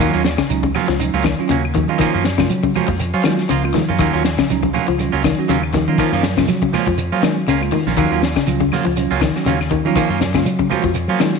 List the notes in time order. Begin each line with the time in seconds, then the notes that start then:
0.00 D#2 D#3 F#3 A#3 C#4 F4, shekere
0.13 D#2 F#3 A#3 C#4 F4, closed hi-hat
0.25 snare, closed hi-hat, high conga, shekere
0.38 C#3, muted clean electric guitar stroke, kick, snare, closed hi-hat, claves
0.49 C#2 F#3 C#4 D#4, closed hi-hat, shekere
0.63 C#3, muted clean electric guitar stroke, kick, closed hi-hat
0.74 F#3 A#3 C#4 F4, open hi-hat, high conga, low conga, claves, shekere
0.88 C#2 F3, muted clean electric guitar stroke, snare, closed hi-hat
0.99 F#3 C#4 D#4, muted clean electric guitar stroke, closed hi-hat, shekere
1.14 C#2 F#3 A#3 C#4 F4, closed hi-hat
1.24 D#3, muted clean electric guitar stroke, kick, snare, closed hi-hat, high conga, claves, shekere
1.38 F#3 C#4 F4, closed hi-hat
1.49 D#2 C#3 F#3 A#3 C#4, muted clean electric guitar stroke, closed hi-hat, shekere
1.64 muted clean electric guitar stroke, claves
1.74 D#3, muted clean electric guitar stroke, kick, closed hi-hat, high conga, low conga, shekere
1.88 D#3 F#3 A#3 C#4 F4, closed hi-hat, high conga
1.99 D#3 F3 A#3 C#4 F4, muted fingered electric bass stroke, kick, closed hi-hat, low conga, claves, shekere
2.14 F#2 F3 A#3 C#4 F4
2.24 muted clean electric guitar stroke, snare, closed hi-hat, high conga, shekere
2.38 C#3 G#3 A#3 F4, muted clean electric guitar stroke, kick, snare, closed hi-hat, high conga, claves
2.49 F#3, closed hi-hat, shekere
2.63 C#3, muted clean electric guitar stroke, kick
2.74 F3 G#3 A#3 C#4 F4 F#4, open hi-hat, high conga, low conga, claves, shekere
2.88 F2, muted clean electric guitar stroke, kick
2.99 muted clean electric guitar stroke, closed hi-hat, shekere
3.13 F3 F#3 C#4 F4, closed hi-hat
3.24 D#3 G#3 A#3 F4, muted clean electric guitar stroke, snare, closed hi-hat, high conga, claves, shekere
3.38 snare
3.49 C#2 C#3 F3 A#3 F4, closed hi-hat, shekere
3.63 G#3 A#3 F4, muted clean electric guitar stroke, closed hi-hat, claves
3.74 D#3, muted clean electric guitar stroke, snare, open hi-hat, high conga, low conga, shekere
3.89 F#2 A#3 C#4 F4, high conga
3.99 D#2 D#3 F#3 A#3 C#4 F4, kick, closed hi-hat, claves, shekere
4.13 D#2 F#3 A#3 C#4 F4, closed hi-hat
4.24 muted clean electric guitar stroke, snare, closed hi-hat, high conga, shekere
4.38 C#3, muted clean electric guitar stroke, kick, snare, closed hi-hat, high conga, claves
4.50 C#2 F#3 C#4 D#4, closed hi-hat, high conga, shekere
4.63 C#3, muted clean electric guitar stroke, kick, closed hi-hat
4.74 F#3 A#3 C#4 F4, open hi-hat, high conga, low conga, claves, shekere
4.88 C#2 F3, muted clean electric guitar stroke, closed hi-hat
4.99 F#3 C#4 F4, muted clean electric guitar stroke, closed hi-hat, shekere
5.12 C#2 F#3 A#3 C#4 F4, closed hi-hat
5.24 D#3, muted clean electric guitar stroke, kick, snare, closed hi-hat, high conga, claves, shekere
5.38 F#3 C#4 F#4, closed hi-hat
5.49 D#2 C#3 F#3 A#3 C#4 F4, closed hi-hat, shekere
5.63 muted clean electric guitar stroke, claves
5.73 D#3, muted clean electric guitar stroke, kick, snare, closed hi-hat, high conga, low conga, shekere
5.87 D#3 F#3 A#3 C#4 F4, closed hi-hat, high conga
5.98 D#3 F3 A#3 C#4 F4, muted fingered electric bass stroke, kick, closed hi-hat, claves, shekere
6.12 F#2 F3 A#3 C#4 F4, snare
6.23 muted clean electric guitar stroke, snare, closed hi-hat, high conga, shekere
6.37 C#3 G#3 A#3 F4, muted clean electric guitar stroke, kick, snare, closed hi-hat, high conga, claves
6.48 F#3, snare, closed hi-hat, high conga, shekere
6.62 C#3, muted clean electric guitar stroke, kick
6.73 F3 G#3 A#3 C#4 F4, snare, open hi-hat, high conga, low conga, claves, shekere
6.87 F2 F3, muted clean electric guitar stroke, kick
6.98 muted clean electric guitar stroke, closed hi-hat, shekere
7.12 F3 F#3 A#3 C#4 F4, closed hi-hat
7.22 D#3 G#3 A#3 C#4, snare, closed hi-hat, high conga, claves, shekere
7.47 C#2 C#3 A#3 C#4 F4, snare, closed hi-hat, shekere
7.61 G#3 A#3 F4, muted clean electric guitar stroke, closed hi-hat, claves
7.72 D#3, muted clean electric guitar stroke, open hi-hat, low conga, shekere
7.86 A#1 A#3 C#4 F4, snare, high conga
7.97 D#2 D#3 F#3 A#3 C#4 F4, kick, closed hi-hat, claves, shekere
8.11 D#2 F#3 A#3 C#4 F4, closed hi-hat
8.22 muted clean electric guitar stroke, snare, closed hi-hat, high conga, shekere
8.36 C#3, muted clean electric guitar stroke, kick, snare, closed hi-hat, claves
8.46 C#2 F#3 C#4 F4, closed hi-hat, high conga, shekere
8.61 C#3, muted clean electric guitar stroke, kick, closed hi-hat
8.72 F#3 A#3 F4, muted clean electric guitar stroke, snare, open hi-hat, high conga, low conga, claves, shekere
8.85 C#2 F3, muted clean electric guitar stroke, closed hi-hat
8.96 F#3 C#4 F4, muted clean electric guitar stroke, closed hi-hat, shekere
9.11 C#2 F#3 A#3 C#4 F4, closed hi-hat
9.21 D#3, kick, snare, closed hi-hat, high conga, claves, shekere
9.35 F#3 C#4 F#4, snare, closed hi-hat
9.45 D#2 C#3 F#3 A#3 C#4 F4, closed hi-hat, shekere
9.60 muted clean electric guitar stroke, snare, claves
9.71 D#3, muted clean electric guitar stroke, kick, closed hi-hat, low conga, shekere
9.85 D#3 F#3 A#3 C#4 F4, closed hi-hat, high conga
9.96 D#3 F3 A#3 C#4 F4, muted fingered electric bass stroke, kick, closed hi-hat, claves, shekere
10.09 F#2 A#3 C#4 F4, muted clean electric guitar stroke
10.21 muted clean electric guitar stroke, snare, closed hi-hat, high conga, low conga, shekere
10.34 C#3 G#3 A#3 F4, muted clean electric guitar stroke, kick, snare, closed hi-hat, claves
10.45 F#3, closed hi-hat, shekere
10.59 C#3, muted clean electric guitar stroke, kick
10.69 F3 G#3 A#3 C#4 F4 F#4, open hi-hat, high conga, low conga, claves, shekere
10.84 F2 F3, muted clean electric guitar stroke, kick
10.94 muted clean electric guitar stroke, closed hi-hat, shekere
11.08 F3 F#3 A#3 C#4 F4, closed hi-hat
11.19 D#3 G#3 A#3 F4, muted clean electric guitar stroke, snare, closed hi-hat, high conga, claves, shekere
11.34 snare